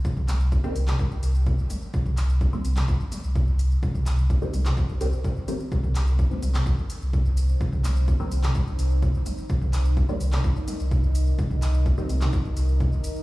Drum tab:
HH |--x---xx--x---x-|--x---xx--x---x-|--x---xx--x---x-|--x---xx--x---x-|
SH |xxxxxxxxxxxxxxxx|xxxxxxxxxxxxxxxx|xxxxxxxxxxxxxxxx|xxxxxxxxxxxxxxxx|
CP |--x----x--------|--x----x--------|--x----x--------|--x----x--------|
T1 |--o-----o-----o-|----o-----o-----|o-----o-----o---|o-----o-----o---|
T2 |-o-----o--------|-o-----o--------|-oo----o--------|-o-----o--------|
BD |o---o---o---o---|o---o---o---o---|o---o---o---o---|o---o---o---o---|

HH |--x---xx--x---x-|--x---xx--x---x-|--x---xx--x---x-|
SH |xxxxxxxxxxxxxxxx|xxxxxxx-xxxxxxxx|xxxxxxxxxxxxxxxx|
CP |--x----x--------|--x----x--------|--x----x--------|
T1 |--o-----o-----o-|----o-----o-----|o-----o-----o---|
T2 |-o-----o--------|-o-----o--------|-o-----o--------|
BD |o---o---o---o---|o---o---o---o---|o---o---o---o---|